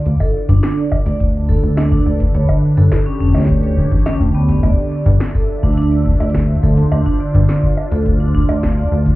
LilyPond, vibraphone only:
\new Staff \with { instrumentName = "Vibraphone" } { \time 4/4 \key d \dorian \tempo 4 = 105 r16 a'16 r16 d'16 d'16 d''16 r16 d''16 r8 a'16 r16 d'16 d'16 d''16 r16 | cis''16 r8 a'16 r16 cis'16 cis'16 cis''16 r16 cis''16 r8 cis'16 r16 b16 b16 | d''16 r16 d''16 r8 a'16 r16 d'16 d'16 d''16 r16 d''16 r8 a'16 r16 | d'16 d'16 d''16 r16 d''16 r8 a'16 r16 d'16 d'16 d''16 r16 d''16 r8 | }